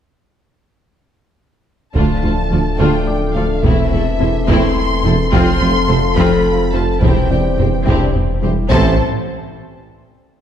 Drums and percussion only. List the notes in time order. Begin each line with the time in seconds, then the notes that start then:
1.96 taiko
3.64 taiko
4.49 taiko
5.33 taiko
6.18 taiko
7.02 taiko
7.59 taiko low
7.87 taiko
8.15 taiko low
8.72 taiko